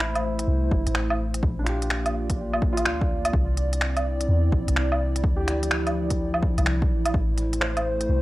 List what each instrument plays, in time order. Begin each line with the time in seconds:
Already playing: 808-style bass A1, analog synth pad A3 E4 C5, felt piano E4
0.00 finger snap
0.16 closed hi-hat, low woodblock
0.39 closed hi-hat
0.48 808-style bass C2
0.72 808-style bass G1, kick
0.87 808-style bass A1, closed hi-hat
0.95 finger snap
1.10 low woodblock
1.34 closed hi-hat
1.43 808-style bass A#1, analog synth pad A#3 F4 D5, kick
1.59 felt piano D4
1.64 felt piano F4, finger snap, closed hi-hat
1.69 felt piano G4
1.82 closed hi-hat
1.90 finger snap
2.06 closed hi-hat, low woodblock
2.30 kick, closed hi-hat
2.53 low woodblock
2.62 kick
2.73 felt piano F4
2.77 closed hi-hat, low woodblock
2.85 808-style bass D2, finger snap
3.01 kick
3.25 closed hi-hat, low woodblock
3.33 808-style bass C2, analog synth pad C4 E4, kick
3.57 closed hi-hat
3.73 closed hi-hat
3.81 finger snap
3.97 closed hi-hat, low woodblock
4.21 closed hi-hat
4.28 808-style bass E2
4.52 808-style bass A#1, kick
4.68 808-style bass C2, closed hi-hat
4.76 finger snap
4.92 low woodblock
5.16 closed hi-hat
5.24 808-style bass D2, analog synth pad F3, kick
5.36 felt piano G4
5.48 finger snap, closed hi-hat
5.63 closed hi-hat
5.71 finger snap
5.87 closed hi-hat, low woodblock
6.10 kick, closed hi-hat
6.34 low woodblock
6.43 kick
6.58 808-style bass C2, closed hi-hat, low woodblock
6.66 finger snap
6.82 kick
6.90 808-style bass A1
7.06 closed hi-hat, low woodblock
7.14 808-style bass A1, analog synth pad A3 C5, kick
7.38 closed hi-hat
7.53 closed hi-hat
7.61 felt piano C5, finger snap
7.77 closed hi-hat, low woodblock
8.01 closed hi-hat
8.09 808-style bass C2